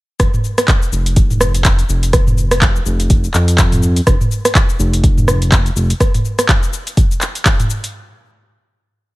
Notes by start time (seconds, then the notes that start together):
0.20 F1, kick, cross-stick, closed hi-hat, cabasa
0.34 mid tom, cabasa
0.44 cabasa
0.58 cross-stick, closed hi-hat, cabasa
0.68 kick, clap, closed hi-hat, cabasa
0.82 cabasa
0.92 F1, cabasa
1.06 closed hi-hat, cabasa
1.16 kick, closed hi-hat, cabasa
1.30 mid tom, cabasa
1.41 cross-stick, cabasa
1.55 closed hi-hat, cabasa
1.65 kick, clap, closed hi-hat, cabasa
1.79 closed hi-hat, cabasa
1.89 F1, cabasa
2.03 closed hi-hat, cabasa
2.13 kick, cross-stick, closed hi-hat, cabasa
2.27 mid tom, cabasa
2.38 cabasa
2.51 cross-stick, closed hi-hat, cabasa
2.62 kick, clap, closed hi-hat, cabasa
2.76 cabasa
2.86 F1, cabasa
3.00 closed hi-hat, cabasa
3.10 kick, closed hi-hat, cabasa
3.24 cabasa
3.34 F2, clap, cabasa
3.48 closed hi-hat, cabasa
3.58 kick, clap, closed hi-hat, cabasa
3.72 closed hi-hat, mid tom, cabasa
3.83 cabasa
3.96 closed hi-hat, cabasa
4.07 F1, kick, cross-stick, closed hi-hat, cabasa
4.21 mid tom, cabasa
4.31 cabasa
4.45 cross-stick, closed hi-hat, cabasa
4.55 kick, clap, closed hi-hat, cabasa
4.69 cabasa
4.79 F1, cabasa
4.93 closed hi-hat, cabasa
5.04 kick, closed hi-hat, cabasa
5.18 mid tom, cabasa
5.28 cross-stick, cabasa
5.42 closed hi-hat, cabasa
5.52 kick, clap, closed hi-hat, cabasa
5.66 closed hi-hat, cabasa
5.76 F1, cabasa
5.90 closed hi-hat, cabasa
6.00 kick, cross-stick, closed hi-hat, cabasa
6.14 closed hi-hat, mid tom, cabasa
6.25 cabasa
6.39 cross-stick, closed hi-hat, cabasa
6.49 kick, clap, closed hi-hat, cabasa
6.63 cabasa
6.73 cabasa
6.87 closed hi-hat, cabasa
6.97 kick, closed hi-hat, cabasa
7.11 cabasa
7.21 clap, cabasa
7.35 closed hi-hat, cabasa
7.46 kick, clap, closed hi-hat, cabasa
7.60 closed hi-hat, mid tom, cabasa
7.70 cabasa
7.84 closed hi-hat, cabasa